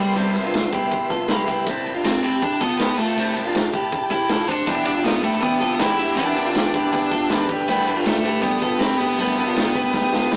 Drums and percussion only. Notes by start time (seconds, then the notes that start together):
0.16 hi-hat pedal, ride
0.36 ride
0.54 snare, ride
0.73 kick, ride
0.91 kick, ride
1.10 kick, ride
1.28 snare, ride
1.48 kick, open hi-hat, ride
1.67 kick, hi-hat pedal, ride
1.86 ride
2.04 snare, ride
2.24 ride
2.42 kick, ride
2.61 kick, ride
2.79 snare, ride
2.99 open hi-hat, ride
3.18 hi-hat pedal, ride
3.37 ride
3.55 snare, ride
3.74 kick, ride
3.92 kick, ride
4.11 kick, ride
4.29 snare, ride
4.49 kick, open hi-hat, ride
4.67 kick, hi-hat pedal, ride
4.87 ride
5.05 snare, ride
5.24 ride
5.42 kick, ride
5.61 kick, ride
5.79 snare, ride
5.99 open hi-hat, ride
6.18 hi-hat pedal, ride
6.37 ride
6.55 snare, ride
6.74 kick, ride
6.92 kick, ride
7.12 kick, ride
7.30 snare, ride
7.49 kick, crash
7.68 hi-hat pedal, ride
7.87 ride
8.05 snare, ride
8.25 ride
8.43 kick, ride
8.62 kick, ride
8.80 snare, ride
9.00 open hi-hat, ride
9.18 hi-hat pedal, ride
9.38 ride
9.56 snare, ride
9.75 kick, ride
9.94 kick, snare
10.13 snare
10.32 snare